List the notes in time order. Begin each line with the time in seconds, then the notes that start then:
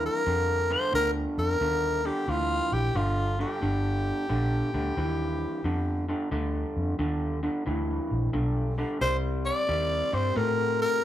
Already playing: G2 E3
0.06 A#4
0.27 F2 G2 D3
0.70 G2 D3 C5
0.93 D2 G2 D3 A#4
1.38 F2 A#4
1.61 D#2 G2 D3
2.05 G2 D3 G4
2.28 D2 G2 E3 F4
2.72 A#1 G4
2.95 G1 G2 D3 F4
3.39 G2 D3 G4
3.62 G1 G2 D3
4.29 A#1 G2 D3
4.74 D2 G2 D3
4.97 D#2 G2 E3
5.64 F2 G2 D3
6.09 G2 D3
6.31 D2 G2 D3
6.77 F2
6.99 D#2 G2 D3
7.43 G2 D3
7.66 D2 G2 E3
8.11 A#1
8.33 B1 G2 D3
8.78 G2 D3
9.01 C2 C3 G3 C5
9.45 D5
9.68 D#2 C3 G3
10.12 G2 C3 G3 C5
10.36 A2 C3 A3 A#4
10.82 A#4